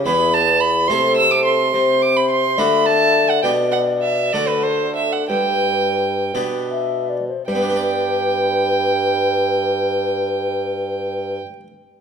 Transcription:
X:1
M:6/8
L:1/16
Q:3/8=60
K:G
V:1 name="Violin"
b2 a2 b2 c'2 e' d' c'2- | c'2 d' b c'2 b2 a3 f | g2 f2 e2 d B c2 e f | g6 z6 |
g12- | g12 |]
V:2 name="Flute"
B4 z2 A6 | c6 e6 | d6 A6 | B6 g2 e2 d c |
B12- | B12 |]
V:3 name="Harpsichord"
[E,,B,EG]6 [C,A,EA]6 | C,6 [D,A,DF]6 | [B,,DG]6 [D,A,DF]6 | G,,6 [B,,B,DG]6 |
[G,B,DGd]12- | [G,B,DGd]12 |]
V:4 name="Bassoon" clef=bass
E,,6 C,6 | C,6 D,6 | B,,6 D,6 | G,,6 B,,6 |
G,,12- | G,,12 |]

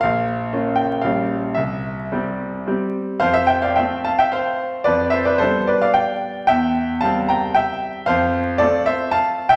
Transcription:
X:1
M:3/4
L:1/16
Q:1/4=113
K:F
V:1 name="Grand piano"
f6 g2 f4 | e8 z4 | [cf] [ce] [eg] [df] [eg]2 [fa] [eg] [cf]4 | [=Bd]2 [ce] [Bd] [Ac]2 [Bd] [df] [dg]4 |
[eg]4 [fa]2 [gb]2 [eg]4 | [cf]4 [Ad]2 [ce]2 [fa]3 [eg] |]
V:2 name="Grand piano"
B,,,4 [B,_DF]4 [B,,,G,DG]4 | C,,4 [G,CG]4 [G,CG]4 | F,,4 [A,CF]8 | F,,4 [G,=B,D]8 |
E,,4 [G,C]8 | F,,4 [A,CF]8 |]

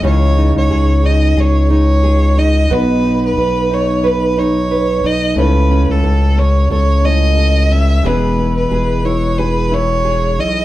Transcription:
X:1
M:4/4
L:1/16
Q:"Swing 16ths" 1/4=90
K:E
V:1 name="Violin"
c3 c3 d2 c2 c4 d2 | B3 B3 c2 B2 c4 d2 | B3 A3 c2 c2 d4 e2 | B3 B3 c2 B2 c4 d2 |]
V:2 name="Nylon-string guitar"
[C,G]2 D2 G2 D2 G2 D2 G2 D2 | [B,,B]2 D2 B2 D2 B2 D2 B2 D2 | [C,A]2 C2 A2 C2 A2 C2 A2 C2 | [E,G]2 E2 G2 E2 G2 E2 G2 E2 |]
V:3 name="Grand piano"
[G,DEc]16 | [B,DFd]16 | [A,CEc]8- [A,CEc]2 [A,CEc]6 | [G,B,EB]16 |]
V:4 name="Analog synth bass" clef=bass
C,,3 C,, C,,4 C,,8 | B,,,4 B,,,8- B,,,2 B,,,2 | C,,3 C,, C,,4 C,,8 | E,,,4 E,,,8- E,,,2 B,,,2 |]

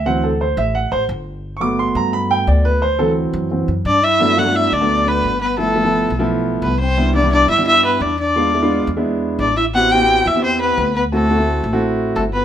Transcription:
X:1
M:4/4
L:1/16
Q:1/4=173
K:G
V:1 name="Erhu"
z16 | z16 | z12 d2 e2- | e2 f2 e2 d4 B4 B2 |
A8 z4 B2 c2- | c2 d2 d2 e2 e2 B2 d2 d2- | d6 z6 d2 e2 | f2 g4 e2 c2 B4 B2 |
A8 z4 A2 B2 |]
V:2 name="Trombone"
z16 | z16 | z12 D2 E2- | E2 F2 E2 D4 B,4 B,2 |
A,8 z4 B,2 C2- | C2 D2 D2 E2 E2 B,2 D2 D2- | D6 z6 D2 E2 | F2 G4 E2 C2 B,4 B,2 |
A,8 z4 A,2 B,2 |]
V:3 name="Grand piano"
f2 A2 c2 e2 f2 c2 z4 | z2 [^c'd']2 =c'2 _b2 =b2 g2 d2 B2 | c2 A2 z12 | [F,A,B,D] z [F,A,B,D] [F,A,B,D]3 z [F,A,B,D]6 z3 |
[=F,A,B,E] z [F,A,B,E] [F,A,B,E]3 z [F,A,B,E]6 z3 | [G,B,DE] z [G,B,DE] [G,B,DE]3 z [G,B,DE]6 z3 | [^G,B,D=F] z [G,B,DE] [G,B,DF]3 z [G,B,DE]6 z3 | [B,CEG] z [B,CEF] [B,CEF]3 z [B,CEG]6 z3 |
[A,CEF] z [A,CEF] [A,CEF]3 z [A,CEF]6 z3 |]
V:4 name="Grand piano" clef=bass
[E,F,C]2 z12 z2 | z2 [F,A,B,]12- [F,A,B,]2 | z2 [E,F,C]6 [E,F,C]2 z6 | z16 |
z16 | z16 | z16 | z16 |
z16 |]
V:5 name="Upright bass" clef=bass
D,,6 A,,,4 A,,,2 G,,,4- | G,,,6 G,,6 D,,4- | D,,6 F,,4 F,,2 G,,4- | G,,6 D,,6 G,,,4- |
G,,,6 B,,,6 C,,4- | C,,6 G,,6 E,,4- | E,,6 E,,6 A,,,4- | A,,,6 E,,6 D,,4- |
D,,6 A,,,6 G,,,4 |]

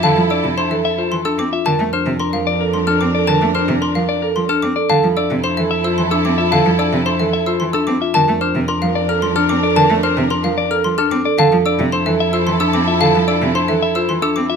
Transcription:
X:1
M:3/4
L:1/16
Q:1/4=111
K:F
V:1 name="Xylophone"
f z e' z c' e z2 c' e' d' z | a z f' z c' f z2 c' f' d' z | a z f' z c' f z2 c' f' d' z | f z e' z c' e z e' c' e' d' z |
f z e' z c' e z e' c' e' d' z | a z f' z c' f z f' c' f' d' z | a z f' z c' f z f' c' f' d' z | f z e' z c' e z e' c' e' d' z |
f z e' z c' e z e' c' e' d' z |]
V:2 name="Clean electric guitar"
a z d z c z e c z A z e | a z c z B z d B z A z d | a z c z B z d B z A z d | a z d z c z e c z A z e |
a z d z c z e c z A z e | a z c z B z d B z A z d | a z c z B z d B z A z d | a z d z c z e c z A z e |
a z d z c z e c z A z e |]
V:3 name="String section"
[EA]8- [EA]3 z | [DB]12- | [DB]8- [DB]3 z | [EA]12- |
[EA]8- [EA]3 z | [DB]12- | [DB]8- [DB]3 z | [EA]12- |
[EA]8- [EA]3 z |]
V:4 name="Marimba"
A z D z D A z F z D z F | B z D z D B z A z D z A | B z D z D B z A z D z A | A z D z D A z F z D z F |
A z D z D A z F z D z F | B z D z D B z A z D z A | B z D z D B z A z D z A | A z D z D A z F z D z F |
A z D z D A z F z D z F |]
V:5 name="Cello" clef=bass
D, F, z C, z E, z2 E, z C z | D, A, z C, z F, z2 F, z C z | D, A, z C, z F, z2 F, z C z | D, F, z C, z E, z2 E, z C z |
D, F, z C, z E, z2 E, z C z | D, A, z C, z F, z2 F, z C z | D, A, z C, z F, z2 F, z C z | D, F, z C, z E, z2 E, z C z |
D, F, z C, z E, z2 E, z C z |]
V:6 name="Double bass" clef=bass
F,,12 | F,,12- | F,,12 | F,,12- |
F,,12 | F,,12- | F,,12 | F,,12- |
F,,12 |]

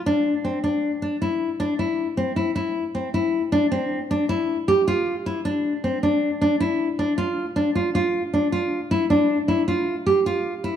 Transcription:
X:1
M:7/4
L:1/8
Q:1/4=156
K:Cmix
V:1 name="Nylon-string guitar"
D2 C D2 D E2 D E2 C E E- | E C E2 D C2 D E2 G F2 E | D2 C D2 D E2 D F2 D F F- | F D F2 E D2 E F2 G F2 E |]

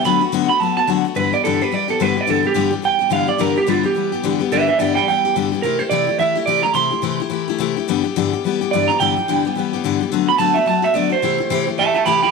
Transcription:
X:1
M:4/4
L:1/8
Q:"Swing" 1/4=214
K:G
V:1 name="Clean electric guitar"
b z2 b a a z2 | B d A B d A B d | A G2 z g2 =f d | _B G =F G4 z |
[Be] [Be] [dg] [dg] g2 z2 | _B c d2 e z d _b | c'6 z2 | z6 d _b |
g6 z2 | z b a e a e d c- | c3 z [ea] [ea] [gb] [gb] |]
V:2 name="Steel-string acoustic guitar"
[D,F,A,B,F] [A,B,F] [D,F,A,B,F] [B,F] [F,A,B,F] [A,B,F] [D,F,A,B,F] F | [G,,D,E,G,B,G] [E,G,B,G] [G,,D,E,G,B,G] [E,G,B,G] [E,G,B,G] [E,G,B,G] [G,,D,E,G,B,G] [E,G,B,G] | [G,,D,E,G,B,G] [E,G,B,G] [G,,D,E,G,B,G] [E,G,B,G] [E,G,B,G] [E,G,B,G] [G,,D,E,G,B,G] [E,G,B,G] | [G,,D,E,G,B,G] [E,G,B,G] [G,,D,E,G,B,G] [E,G,B,G] [E,G,B,G] [E,G,B,G] [G,,D,E,G,B,G] [E,G,B,G] |
[G,,D,E,G,B,G] [E,G,B,G] [G,,D,E,G,B,G] [E,G,B,G] [E,G,B,G] [E,G,B,G] [G,,D,E,G,B,G] [E,G,B,G] | [C,E,A,EG] [A,EG] [C,E,A,EG] [A,EG] [E,A,EG] [A,EG] [C,E,A,EG] [A,EG] | [C,E,A,EG] [A,EG] [C,E,A,EG] [A,EG] [E,A,EG] [A,EG] [C,E,A,EG] [A,EG] | [G,,D,E,G,B,G] [E,G,B,G] [G,,D,E,G,B,G] [E,G,B,G] [E,G,B,G] [E,G,B,G] [G,,D,E,G,B,G] [E,G,B,G] |
[G,,D,E,G,B,G] [E,G,B,G] [G,,D,E,G,B,G] [E,G,B,G] [E,G,B,G] [E,G,B,G] [G,,D,E,G,B,G] [E,G,B,G] | [D,F,A,B,F] [A,B,F] [D,F,A,B,F] [A,B,F] [F,A,B,F] [A,B,F] [D,F,A,B,F] [A,B,F] | [C,E,A,EG] [A,EG] [C,E,A,EG] [A,EG] [E,A,EG] [A,EG] [C,E,A,EG] [A,EG] |]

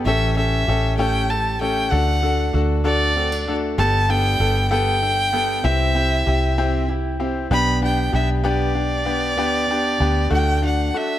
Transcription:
X:1
M:6/8
L:1/16
Q:3/8=64
K:G
V:1 name="Violin"
e2 e4 g2 a2 g2 | f4 z2 d4 z2 | a2 g4 g6 | e8 z4 |
b2 g2 e2 d6- | d6 g2 f2 e2 |]
V:2 name="Grand piano"
[^CGA]2 [CGA]2 [CGA]2 [CGA]2 [GA]2 [CGA]2 | [DFA]2 [DFA]2 [DFA]2 [DFA]2 [FA]2 [DFA]2 | [B,GA]2 [B,GA]2 [B,GA]2 [B,GA]2 [GA]2 [B,GA]2 | [CEG]2 [CEG]2 [CEG]2 [CEG]2 [EG]2 [CEG]2 |
[B,DG]2 [B,DG]2 [B,DG]2 [B,DG]2 [DG]2 [B,DG]2 | [B,DG]2 [B,DG]2 [B,DG]2 [A,DF]2 [DF]2 [A,DF]2 |]
V:3 name="Steel-string acoustic guitar"
E,2 ^C2 G2 A,2 C2 A,2 | A,2 D2 F2 A,2 C D A,2 | G,2 D2 A2 B,2 D2 B,2 | C2 E2 G2 C2 E2 C2 |
B,2 D2 G2 B,2 D2 B,2 | B,2 D2 G2 A,2 D2 A,2 |]
V:4 name="Fingered electric bass" clef=bass
A,,,4 A,,,8 | D,,4 D,,8 | G,,,4 G,,,8 | C,,4 C,,8 |
B,,,4 B,,,8 | D,,4 D,,2 D,,4 z2 |]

